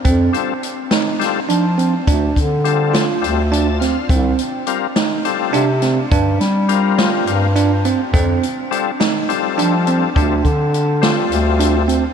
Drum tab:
HH |xxxxxxx|xxxxxxx|xxxxxxx|xxxxxxx|
SD |---oo--|---o--o|---o--o|-o-o---|
BD |o------|oo-----|o------|o------|

HH |xxxxxxx|xxxxxxx|
SD |---o---|---o---|
BD |o------|oo-----|